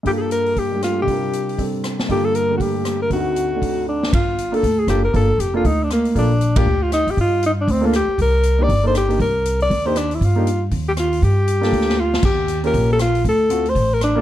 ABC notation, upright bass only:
X:1
M:4/4
L:1/8
Q:"Swing" 1/4=237
K:Gm
V:1 name="Upright bass" clef=bass
z8 | z8 | z8 | z8 |
G,,,4 D,,2 ^F,,,2 | G,,,2 F,,,2 D,,4 | B,,,4 D,,3 ^F,,, | G,,4 D,,3 z |
C,,4 G,,,4 | C,,4 E,,4 | G,,4 E,,4 | G,,4 D,,4 |
E,,4 B,,,4 | D,,4 A,,,4 |]